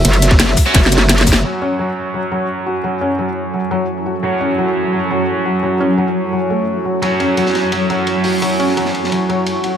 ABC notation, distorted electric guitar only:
X:1
M:4/4
L:1/16
Q:1/4=172
K:F#m
V:1 name="Distorted electric guitar"
z6 z [F,CF] z8 | [F,CF]16- | [F,CF]16 | [F,CF]16- |
[F,CF]16 | [F,CF]16- | [F,CF]16 |]